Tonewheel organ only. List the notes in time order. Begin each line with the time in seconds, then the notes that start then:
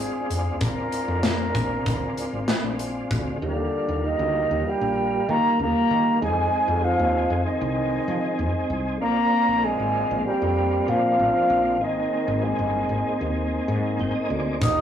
Already playing: G#3 C4 D4 F4
0.60 G#3 C4 D4 F4
3.41 G3 A#3 F4
6.21 G#3 C4 D#4 G#4
9.01 A#3 C4 D4 F4
11.80 A#3 C4 D#4 G#4
14.00 G5
14.15 D#5
14.30 D5
14.61 A#3 F4 G4